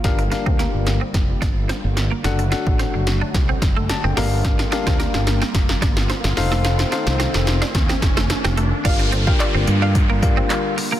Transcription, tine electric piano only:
\new Staff \with { instrumentName = "Tine electric piano" } { \time 4/4 \key g \minor \tempo 4 = 109 << { r1 | r2. a''16 g''16 f''8 | r1 | r1 |
r1 | } \\ { <d' g' bes' f''>16 r16 <d' g' bes' f''>4~ <d' g' bes' f''>16 r2 r16 | <d' fis' a' fis''>16 r16 <d' fis' a' fis''>4~ <d' fis' a' fis''>16 r4. r16 <d' g' bes'>8~ | <d' g' bes'>16 r16 <d' g' bes' f''>4~ <d' g' bes' f''>16 r4. r16 <ees' a' c'' f''>8~ | <ees' a' c'' f''>16 r16 <ees' a' c'' f''>4~ <ees' a' c'' f''>16 r2 r16 |
<d' f' g' bes' f''>8 r16 <d' f' g' bes' g''>4 r8. <d' f' g' bes' f''>4 r8 | } >> }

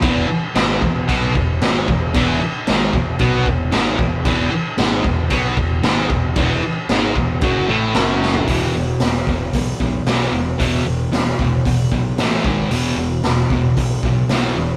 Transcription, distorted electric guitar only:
\new Staff \with { instrumentName = "Distorted electric guitar" } { \clef bass \time 4/4 \key e \major \tempo 4 = 114 <e, e>8 r8 <gis, gis>8 e,8 <b, b>8 e,8 <gis, gis>8 e,8 | <e, e>8 r8 <gis, gis>8 e,8 <b, b>8 e,8 <gis, gis>8 e,8 | <e, e>8 r8 <gis, gis>8 e,8 <b, b>8 e,8 <gis, gis>8 e,8 | <e, e>8 r8 <gis, gis>8 e,8 <fis, fis>8 <a, a>8 <fis, fis>4 |
<e, b, e>8 <e, b,>8 <e, b,>8 <e, b,>8 <e, b,>8 <e, b,>8 <e, b, e>8 <e, b,>8 | <e, b, e>8 <e, b,>8 <e, b,>8 <e, b,>8 <e, b,>8 <e, b,>8 <a, e a>8 <gis, dis gis>8 | <e, b, e>8 <e, b,>8 <e, b,>8 <e, b,>8 <e, b,>8 <e, b,>8 <e, b, e>8 <e, b,>8 | }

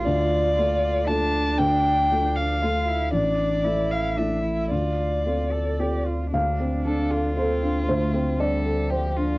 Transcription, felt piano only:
\new Staff \with { instrumentName = "Felt piano" } { \time 3/4 \key d \minor \tempo 4 = 116 << { r2. | r2. | r2. | r2. |
f''2 a'4 | c''4 d''4. r8 | } \\ { d,4 <a f' a'>4 <a f' a'>4 | d,4 <a f' a'>4 <a f' a'>4 | a,,4 <a e' a'>4 <a e' a'>4 | d,4 <c' f' a'>4 <c' f' a'>4 |
d,8 c'8 d'8 a'8 c''8 d'8 | d,8 c'8 d'8 a'8 c''8 d'8 | } >> }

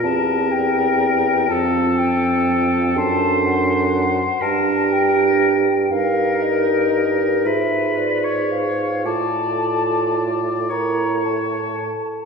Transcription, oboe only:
\new Staff \with { instrumentName = "Oboe" } { \time 6/8 \key d \minor \tempo 4. = 39 bes'4. a'4. | c''4. bes'4. | bes'4. b'8. cis''8. | d''4. cis''4~ cis''16 r16 | }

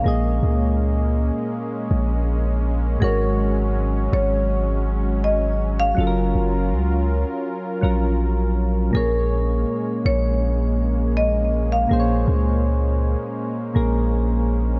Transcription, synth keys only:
\new Staff \with { instrumentName = "Synth keys" } { \time 4/4 \key bes \minor \tempo 4 = 81 <bes, bes aes' ees''>1 | <aes, aes ges' des''>1 | <ges des' f' a' bes'>2~ <ges des' f' a' bes'>8 <ges des' f' bes'>4. | <bes, bes aes' des''>1 |
<bes, bes aes' c'' des''>2~ <bes, bes aes' c'' des''>8 <bes, bes aes' bes'>4. | }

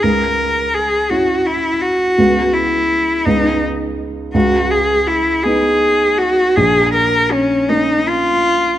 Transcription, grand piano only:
\new Staff \with { instrumentName = "Grand piano" } { \time 6/8 \key b \major \tempo 4. = 54 cis,4. <cis' e'>4. | <cis, b fis'>4. <cis, b dis'>4. | cis,4. <b dis'>4. | ais,,4. <ais cis'>4. | }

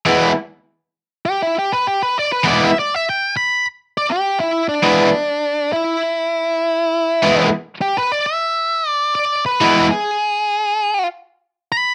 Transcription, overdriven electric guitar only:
\new Staff \with { instrumentName = "Overdriven electric guitar" } { \time 4/4 \key e \mixolydian \tempo 4 = 100 <e gis b e'>8 r2. r8 | <e gis b e'>8 r2. r8 | <e gis b e'>8 r2. r8 | <e gis b e'>8 r2. r8 |
<e gis b e'>8 r2. r8 | }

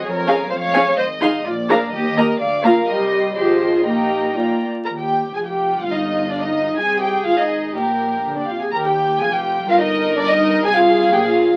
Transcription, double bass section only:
\new Staff \with { instrumentName = "Double bass section" } { \clef bass \time 2/4 \key des \lydian \tempo 4 = 125 f,4 f,4 | \key ees \major aes,,4 bes,,4 | ees,4 d,4 | c,4 aes,,4 |
bes,,4 bes,,8 r8 | ees,4 f,,4 | g,,2 | c,4 aes,,4 |
bes,,4. r8 | ees,4 f,,4 | g,,2 | c,4 bes,,4 | }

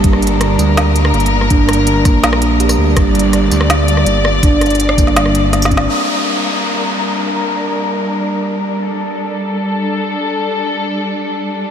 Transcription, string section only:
\new Staff \with { instrumentName = "String section" } { \time 4/4 \key g \minor \tempo 4 = 164 << { bes'1~ | bes'1 | d''1~ | d''1 |
bes'1~ | bes'1 | a'1~ | a'1 | } \\ { <g d'>1~ | <g d'>1~ | <g d'>1~ | <g d'>1 |
<g d'>1~ | <g d'>1~ | <g d'>1~ | <g d'>1 | } >> }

